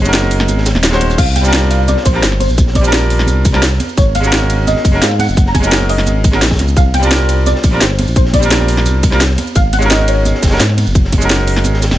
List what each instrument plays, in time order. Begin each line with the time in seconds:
Already playing: analog synth bass F#1, synth pluck D#5
0.02 grand piano G#3 C#4 D#4, shaker
0.07 grand piano F#4 A#4
0.14 snare, closed hi-hat, shaker
0.23 high conga
0.31 closed hi-hat, open hi-hat, ride, shaker
0.40 snare
0.48 analog synth bass G#1, closed hi-hat, high conga, shaker
0.58 snare
0.66 snare, closed hi-hat, ride, shaker
0.75 analog synth bass D#1, snare, high conga
0.83 snare, closed hi-hat, shaker
0.90 grand piano G#3 C#4 D#4 F#4 C5, snare, closed hi-hat
1.01 closed hi-hat, ride, high conga
1.10 closed hi-hat, shaker
1.18 analog synth bass C2, synth pluck F5, kick, closed hi-hat, crash, shaker
1.36 synth pluck G5, closed hi-hat, ride, high conga
1.41 grand piano G3 C4 D4, shaker
1.46 grand piano F4 A#4
1.53 snare, closed hi-hat, shaker
1.62 high conga
1.71 synth pluck F5, closed hi-hat, ride, shaker
1.88 synth pluck D5, closed hi-hat, high conga, shaker
1.97 snare
2.05 analog synth bass A#1, synth pluck C5, kick, closed hi-hat, ride, shaker
2.13 grand piano G3 C4 D4 F4 A#4, high conga
2.23 analog synth bass G1, snare, closed hi-hat, shaker
2.32 snare
2.40 synth pluck C5, closed hi-hat, open hi-hat, ride, high conga
2.50 analog synth bass A#1, shaker
2.58 kick, closed hi-hat, shaker
2.67 snare
2.75 synth pluck D5, kick, closed hi-hat, ride, high conga
2.81 grand piano G3 C4 D4, shaker
2.86 grand piano F4 A#4
2.93 snare, closed hi-hat, shaker
3.02 high conga
3.10 closed hi-hat, open hi-hat, ride, shaker
3.19 snare
3.27 analog synth bass C2, closed hi-hat, high conga, shaker
3.45 kick, closed hi-hat, ride, shaker
3.52 grand piano G3 C4 D4 F4 A#4, snare, high conga
3.63 snare, closed hi-hat, shaker
3.72 snare
3.80 closed hi-hat, ride, high conga
3.89 shaker
3.97 analog synth bass G#1, synth pluck C#5, kick, closed hi-hat, shaker
4.15 synth pluck F5, closed hi-hat, ride, high conga
4.20 grand piano G#3 C#4 D#4, shaker
4.25 grand piano F#4 A#4
4.32 snare, closed hi-hat, shaker
4.42 high conga
4.50 closed hi-hat, ride, shaker
4.67 synth pluck D#5, closed hi-hat, high conga, shaker
4.76 snare
4.85 analog synth bass F#1, kick, closed hi-hat, ride, shaker
4.92 grand piano G#3 C#4 D#4 F#4 A#4, high conga
5.02 analog synth bass G#2, synth pluck F5, snare, closed hi-hat, shaker
5.11 snare
5.19 synth pluck F#5, closed hi-hat, open hi-hat, ride, high conga
5.29 analog synth bass F#1, shaker
5.37 kick, closed hi-hat, shaker
5.46 synth pluck A#5, snare
5.54 synth pluck G#5, kick, closed hi-hat, ride, high conga
5.60 grand piano G#3 C#4 D#4, shaker
5.65 grand piano F#4 A#4
5.72 snare, closed hi-hat, shaker
5.81 high conga
5.89 synth pluck D#5, closed hi-hat, open hi-hat, ride, shaker
5.98 snare
6.06 analog synth bass G#1, closed hi-hat, high conga, shaker
6.24 kick, closed hi-hat, ride, shaker
6.32 grand piano G#3 C#4 D#4 F#4 A#4, snare, high conga
6.42 analog synth bass A#1, snare, closed hi-hat, shaker
6.47 kick, snare, closed hi-hat
6.51 snare, closed hi-hat
6.55 snare, closed hi-hat
6.59 analog synth bass C#2, closed hi-hat, ride, high conga
6.68 shaker
6.77 analog synth bass C2, synth pluck F5, kick, closed hi-hat, shaker
6.94 synth pluck G5, closed hi-hat, ride, high conga
6.99 grand piano G3 C4 D4, shaker
7.05 grand piano F4 A#4
7.11 snare, closed hi-hat, shaker
7.20 high conga
7.29 closed hi-hat, ride, shaker
7.46 synth pluck D5, closed hi-hat, high conga, shaker
7.56 snare
7.64 analog synth bass A#1, kick, closed hi-hat, ride, shaker
7.71 grand piano G3 C4 D4 F4 A#4, high conga
7.81 analog synth bass G1, synth pluck C5, snare, closed hi-hat, shaker
7.90 snare
7.99 closed hi-hat, open hi-hat, ride, high conga
8.08 analog synth bass A#1, shaker
8.16 synth pluck C5, kick, closed hi-hat, shaker
8.25 snare
8.33 synth pluck D5, kick, closed hi-hat, ride, high conga
8.39 grand piano G3 C4 D4, shaker
8.44 grand piano F4 A#4
8.50 snare, closed hi-hat, shaker
8.59 high conga
8.68 closed hi-hat, open hi-hat, ride, shaker
8.77 snare
8.86 analog synth bass C2, closed hi-hat, high conga, shaker
9.03 kick, closed hi-hat, ride, shaker
9.10 grand piano G3 C4 D4 F4 A#4, snare, high conga
9.21 snare, closed hi-hat, shaker
9.31 snare
9.38 closed hi-hat, ride, high conga
9.47 shaker
9.55 analog synth bass G#1, synth pluck F5, kick, closed hi-hat, shaker
9.73 synth pluck F#5, closed hi-hat, ride, high conga
9.79 grand piano G#3 C#4 D#4, shaker
9.84 grand piano F#4 A#4
9.90 synth pluck D#5, snare, closed hi-hat, shaker
10.00 high conga
10.08 synth pluck C#5, closed hi-hat, ride, shaker
10.25 closed hi-hat, high conga, shaker
10.35 snare
10.42 analog synth bass F#1, kick, snare, closed hi-hat, ride, shaker
10.47 grand piano G#3 C#4, snare, closed hi-hat
10.52 grand piano D#4 F#4 A#4, snare, closed hi-hat, high conga
10.57 snare, closed hi-hat
10.60 analog synth bass G#2, snare, closed hi-hat, shaker
10.69 snare
10.78 closed hi-hat, open hi-hat, ride, high conga
10.87 analog synth bass F#1, shaker
10.95 kick, closed hi-hat, shaker
11.04 snare
11.12 kick, closed hi-hat, ride, high conga, shaker
11.18 grand piano G#3 C#4 D#4, shaker
11.23 grand piano F#4 A#4
11.30 snare, closed hi-hat, shaker
11.39 high conga
11.48 closed hi-hat, open hi-hat, ride, shaker
11.56 snare
11.64 analog synth bass G#1, closed hi-hat, high conga, shaker
11.74 snare
11.82 snare, closed hi-hat, ride, shaker
11.91 analog synth bass D#1, snare, closed hi-hat, high conga